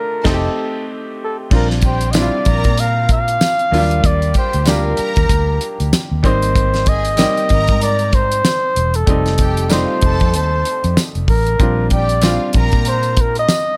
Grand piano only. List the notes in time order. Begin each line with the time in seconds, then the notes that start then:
Already playing: A3 D4 F4
0.24 A3 C4 D#4
0.34 G4
1.50 G3 C4 D4 F4
2.13 G3 C4 D4 E4
2.22 F4
3.71 F#3 A#3 D4 F4
3.78 G3
4.66 G3 A#3 D4 G4
6.23 G3 A#3 C4 D#4
7.17 G3 A#3 C4 D#4
9.06 G3 A3 C4 D#4
9.70 G3 A3 C4 D#4
11.59 G3 C4 D4 F4
12.22 G3 C4 D4 F4